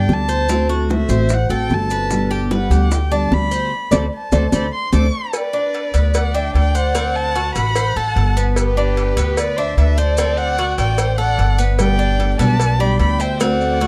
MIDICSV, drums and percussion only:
0, 0, Header, 1, 2, 480
1, 0, Start_track
1, 0, Key_signature, 1, "major"
1, 0, Tempo, 403497
1, 579, Time_signature, 4, 2, 24, 8
1, 16503, End_track
2, 0, Start_track
2, 0, Title_t, "Drums"
2, 107, Note_on_c, 9, 60, 32
2, 107, Note_on_c, 9, 61, 79
2, 110, Note_on_c, 9, 70, 27
2, 226, Note_off_c, 9, 60, 0
2, 226, Note_off_c, 9, 61, 0
2, 229, Note_off_c, 9, 70, 0
2, 340, Note_on_c, 9, 70, 76
2, 352, Note_on_c, 9, 60, 35
2, 459, Note_off_c, 9, 70, 0
2, 471, Note_off_c, 9, 60, 0
2, 579, Note_on_c, 9, 70, 89
2, 590, Note_on_c, 9, 60, 67
2, 698, Note_off_c, 9, 70, 0
2, 709, Note_off_c, 9, 60, 0
2, 825, Note_on_c, 9, 70, 31
2, 834, Note_on_c, 9, 60, 35
2, 944, Note_off_c, 9, 70, 0
2, 953, Note_off_c, 9, 60, 0
2, 1062, Note_on_c, 9, 70, 31
2, 1077, Note_on_c, 9, 60, 66
2, 1181, Note_off_c, 9, 70, 0
2, 1196, Note_off_c, 9, 60, 0
2, 1294, Note_on_c, 9, 70, 74
2, 1316, Note_on_c, 9, 60, 38
2, 1413, Note_off_c, 9, 70, 0
2, 1435, Note_off_c, 9, 60, 0
2, 1534, Note_on_c, 9, 70, 92
2, 1551, Note_on_c, 9, 60, 69
2, 1653, Note_off_c, 9, 70, 0
2, 1670, Note_off_c, 9, 60, 0
2, 1776, Note_on_c, 9, 70, 25
2, 1895, Note_off_c, 9, 70, 0
2, 2017, Note_on_c, 9, 70, 30
2, 2033, Note_on_c, 9, 60, 33
2, 2033, Note_on_c, 9, 61, 75
2, 2136, Note_off_c, 9, 70, 0
2, 2152, Note_off_c, 9, 60, 0
2, 2152, Note_off_c, 9, 61, 0
2, 2260, Note_on_c, 9, 70, 76
2, 2269, Note_on_c, 9, 60, 37
2, 2379, Note_off_c, 9, 70, 0
2, 2388, Note_off_c, 9, 60, 0
2, 2503, Note_on_c, 9, 70, 100
2, 2505, Note_on_c, 9, 60, 60
2, 2622, Note_off_c, 9, 70, 0
2, 2624, Note_off_c, 9, 60, 0
2, 2748, Note_on_c, 9, 70, 28
2, 2750, Note_on_c, 9, 60, 37
2, 2867, Note_off_c, 9, 70, 0
2, 2869, Note_off_c, 9, 60, 0
2, 2987, Note_on_c, 9, 60, 61
2, 2991, Note_on_c, 9, 70, 32
2, 3106, Note_off_c, 9, 60, 0
2, 3110, Note_off_c, 9, 70, 0
2, 3230, Note_on_c, 9, 60, 38
2, 3230, Note_on_c, 9, 70, 69
2, 3349, Note_off_c, 9, 60, 0
2, 3349, Note_off_c, 9, 70, 0
2, 3464, Note_on_c, 9, 70, 92
2, 3469, Note_on_c, 9, 60, 69
2, 3583, Note_off_c, 9, 70, 0
2, 3588, Note_off_c, 9, 60, 0
2, 3703, Note_on_c, 9, 70, 27
2, 3822, Note_off_c, 9, 70, 0
2, 3942, Note_on_c, 9, 70, 29
2, 3947, Note_on_c, 9, 60, 33
2, 3947, Note_on_c, 9, 61, 77
2, 4061, Note_off_c, 9, 70, 0
2, 4066, Note_off_c, 9, 60, 0
2, 4066, Note_off_c, 9, 61, 0
2, 4181, Note_on_c, 9, 70, 79
2, 4189, Note_on_c, 9, 60, 37
2, 4300, Note_off_c, 9, 70, 0
2, 4308, Note_off_c, 9, 60, 0
2, 4659, Note_on_c, 9, 70, 110
2, 4671, Note_on_c, 9, 61, 100
2, 4778, Note_off_c, 9, 70, 0
2, 4790, Note_off_c, 9, 61, 0
2, 5138, Note_on_c, 9, 70, 107
2, 5143, Note_on_c, 9, 61, 111
2, 5257, Note_off_c, 9, 70, 0
2, 5262, Note_off_c, 9, 61, 0
2, 5381, Note_on_c, 9, 61, 99
2, 5384, Note_on_c, 9, 70, 112
2, 5500, Note_off_c, 9, 61, 0
2, 5503, Note_off_c, 9, 70, 0
2, 5859, Note_on_c, 9, 61, 103
2, 5861, Note_on_c, 9, 70, 90
2, 5978, Note_off_c, 9, 61, 0
2, 5980, Note_off_c, 9, 70, 0
2, 6343, Note_on_c, 9, 70, 96
2, 6346, Note_on_c, 9, 56, 98
2, 6462, Note_off_c, 9, 70, 0
2, 6465, Note_off_c, 9, 56, 0
2, 6587, Note_on_c, 9, 70, 31
2, 6706, Note_off_c, 9, 70, 0
2, 6824, Note_on_c, 9, 70, 32
2, 6835, Note_on_c, 9, 56, 68
2, 6943, Note_off_c, 9, 70, 0
2, 6954, Note_off_c, 9, 56, 0
2, 7064, Note_on_c, 9, 56, 81
2, 7064, Note_on_c, 9, 70, 82
2, 7183, Note_off_c, 9, 56, 0
2, 7183, Note_off_c, 9, 70, 0
2, 7304, Note_on_c, 9, 70, 95
2, 7314, Note_on_c, 9, 56, 109
2, 7423, Note_off_c, 9, 70, 0
2, 7433, Note_off_c, 9, 56, 0
2, 7554, Note_on_c, 9, 70, 28
2, 7673, Note_off_c, 9, 70, 0
2, 7790, Note_on_c, 9, 70, 29
2, 7797, Note_on_c, 9, 56, 64
2, 7909, Note_off_c, 9, 70, 0
2, 7916, Note_off_c, 9, 56, 0
2, 8030, Note_on_c, 9, 70, 78
2, 8149, Note_off_c, 9, 70, 0
2, 8268, Note_on_c, 9, 70, 105
2, 8269, Note_on_c, 9, 56, 92
2, 8387, Note_off_c, 9, 70, 0
2, 8388, Note_off_c, 9, 56, 0
2, 8511, Note_on_c, 9, 70, 31
2, 8630, Note_off_c, 9, 70, 0
2, 8746, Note_on_c, 9, 70, 32
2, 8749, Note_on_c, 9, 56, 70
2, 8865, Note_off_c, 9, 70, 0
2, 8868, Note_off_c, 9, 56, 0
2, 8986, Note_on_c, 9, 70, 78
2, 8989, Note_on_c, 9, 56, 80
2, 9105, Note_off_c, 9, 70, 0
2, 9108, Note_off_c, 9, 56, 0
2, 9226, Note_on_c, 9, 56, 101
2, 9226, Note_on_c, 9, 70, 86
2, 9345, Note_off_c, 9, 56, 0
2, 9345, Note_off_c, 9, 70, 0
2, 9467, Note_on_c, 9, 70, 25
2, 9586, Note_off_c, 9, 70, 0
2, 9712, Note_on_c, 9, 70, 31
2, 9714, Note_on_c, 9, 56, 67
2, 9831, Note_off_c, 9, 70, 0
2, 9833, Note_off_c, 9, 56, 0
2, 9957, Note_on_c, 9, 70, 81
2, 10076, Note_off_c, 9, 70, 0
2, 10187, Note_on_c, 9, 56, 92
2, 10194, Note_on_c, 9, 70, 101
2, 10306, Note_off_c, 9, 56, 0
2, 10313, Note_off_c, 9, 70, 0
2, 10435, Note_on_c, 9, 70, 32
2, 10554, Note_off_c, 9, 70, 0
2, 10674, Note_on_c, 9, 56, 68
2, 10678, Note_on_c, 9, 70, 34
2, 10793, Note_off_c, 9, 56, 0
2, 10797, Note_off_c, 9, 70, 0
2, 10908, Note_on_c, 9, 56, 79
2, 10915, Note_on_c, 9, 70, 82
2, 11027, Note_off_c, 9, 56, 0
2, 11034, Note_off_c, 9, 70, 0
2, 11150, Note_on_c, 9, 70, 98
2, 11151, Note_on_c, 9, 56, 103
2, 11269, Note_off_c, 9, 70, 0
2, 11270, Note_off_c, 9, 56, 0
2, 11389, Note_on_c, 9, 70, 26
2, 11508, Note_off_c, 9, 70, 0
2, 11631, Note_on_c, 9, 70, 28
2, 11634, Note_on_c, 9, 56, 68
2, 11750, Note_off_c, 9, 70, 0
2, 11753, Note_off_c, 9, 56, 0
2, 11867, Note_on_c, 9, 70, 81
2, 11986, Note_off_c, 9, 70, 0
2, 12100, Note_on_c, 9, 70, 107
2, 12115, Note_on_c, 9, 56, 101
2, 12219, Note_off_c, 9, 70, 0
2, 12234, Note_off_c, 9, 56, 0
2, 12339, Note_on_c, 9, 70, 31
2, 12458, Note_off_c, 9, 70, 0
2, 12580, Note_on_c, 9, 70, 33
2, 12596, Note_on_c, 9, 56, 74
2, 12699, Note_off_c, 9, 70, 0
2, 12715, Note_off_c, 9, 56, 0
2, 12826, Note_on_c, 9, 70, 80
2, 12827, Note_on_c, 9, 56, 76
2, 12945, Note_off_c, 9, 70, 0
2, 12946, Note_off_c, 9, 56, 0
2, 13063, Note_on_c, 9, 56, 102
2, 13063, Note_on_c, 9, 70, 90
2, 13182, Note_off_c, 9, 56, 0
2, 13182, Note_off_c, 9, 70, 0
2, 13312, Note_on_c, 9, 70, 30
2, 13431, Note_off_c, 9, 70, 0
2, 13545, Note_on_c, 9, 70, 30
2, 13547, Note_on_c, 9, 56, 64
2, 13664, Note_off_c, 9, 70, 0
2, 13666, Note_off_c, 9, 56, 0
2, 13782, Note_on_c, 9, 70, 80
2, 13900, Note_off_c, 9, 70, 0
2, 14022, Note_on_c, 9, 56, 101
2, 14024, Note_on_c, 9, 70, 97
2, 14141, Note_off_c, 9, 56, 0
2, 14143, Note_off_c, 9, 70, 0
2, 14266, Note_on_c, 9, 70, 30
2, 14385, Note_off_c, 9, 70, 0
2, 14508, Note_on_c, 9, 70, 33
2, 14510, Note_on_c, 9, 56, 71
2, 14627, Note_off_c, 9, 70, 0
2, 14629, Note_off_c, 9, 56, 0
2, 14742, Note_on_c, 9, 56, 81
2, 14753, Note_on_c, 9, 70, 71
2, 14861, Note_off_c, 9, 56, 0
2, 14872, Note_off_c, 9, 70, 0
2, 14984, Note_on_c, 9, 56, 101
2, 14994, Note_on_c, 9, 70, 98
2, 15103, Note_off_c, 9, 56, 0
2, 15113, Note_off_c, 9, 70, 0
2, 15234, Note_on_c, 9, 70, 28
2, 15353, Note_off_c, 9, 70, 0
2, 15459, Note_on_c, 9, 56, 64
2, 15468, Note_on_c, 9, 70, 28
2, 15578, Note_off_c, 9, 56, 0
2, 15587, Note_off_c, 9, 70, 0
2, 15701, Note_on_c, 9, 70, 81
2, 15820, Note_off_c, 9, 70, 0
2, 15942, Note_on_c, 9, 70, 109
2, 15949, Note_on_c, 9, 56, 99
2, 16061, Note_off_c, 9, 70, 0
2, 16068, Note_off_c, 9, 56, 0
2, 16187, Note_on_c, 9, 70, 31
2, 16306, Note_off_c, 9, 70, 0
2, 16420, Note_on_c, 9, 70, 34
2, 16432, Note_on_c, 9, 56, 69
2, 16503, Note_off_c, 9, 56, 0
2, 16503, Note_off_c, 9, 70, 0
2, 16503, End_track
0, 0, End_of_file